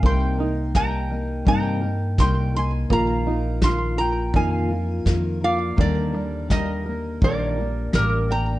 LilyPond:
<<
  \new Staff \with { instrumentName = "Resonator guitar played with a steel bar" } { \time 4/4 \key bes \mixolydian \tempo 4 = 84 c'''4 bes''4 bes''4 c'''8 c'''8 | bes''4 c'''8 bes''8 aes''4. f''8 | d''4 ees''4 d''4 bes'8 bes''8 | }
  \new Staff \with { instrumentName = "Mandolin" } { \time 4/4 \key bes \mixolydian g''4 g''4 g''4 g''8 aes''8 | f''4 f''8 g''8 f''4. d''8 | bes'4 bes'4 bes'4 g'8 g''8 | }
  \new Staff \with { instrumentName = "Five-string banjo" } { \time 4/4 \key bes \mixolydian <bes bes'>8 ees'8 g'4 <ees' bes'>4 bes'4 | <bes bes'>8 ees'8 f'4 <ees' f' bes'>4 bes'4 | <d bes'>8 g8 g'4 <g g' bes'>4 bes'4 | }
  \new Staff \with { instrumentName = "Twelve-string acoustic guitar" } { \time 4/4 \key bes \mixolydian <c g bes ees' bes'>8 <bes ees' bes'>8 <g bes ees' bes'>8 <bes ees' bes'>8 <c g bes ees' bes'>8 <bes ees' bes'>8 <g bes ees' bes'>8 <bes ees' bes'>8 | <bes, ees bes f' bes'>8 <bes f' bes'>8 <ees bes f' bes'>8 <bes f' bes'>8 <bes, ees bes f' bes'>8 <bes f' bes'>8 <ees bes f' bes'>8 <bes f' bes'>8 | <ees g bes d' bes'>8 <bes d' bes'>8 <g bes bes'>8 <bes bes'>8 <ees g bes d' bes'>8 <bes d' bes'>8 <g bes d' bes'>8 <bes d' bes'>8 | }
  \new Staff \with { instrumentName = "Upright bass" } { \clef bass \time 4/4 \key bes \mixolydian c,2 g,4 c,4 | bes,,2 f,4 f,4 | ees,2 bes,,4 a,,4 | }
  \new DrumStaff \with { instrumentName = "Drums" } \drummode { \time 4/4 bd4 <bd sn>4 bd4 <bd sn>4 | bd4 <bd sn>4 bd4 <bd sn>4 | bd4 <bd sn>4 bd4 <bd sn>4 | }
>>